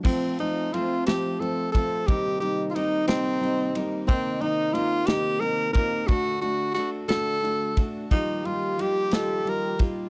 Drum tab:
CC |x-----|------|------|------|
RD |-xxxxx|xxxxxx|xxxxxx|xxxxxx|
SD |---o--|---o--|---o--|---o--|
BD |o----o|o-----|o----o|o----o|

CC |------|
RD |xxxxxx|
SD |---o--|
BD |o----o|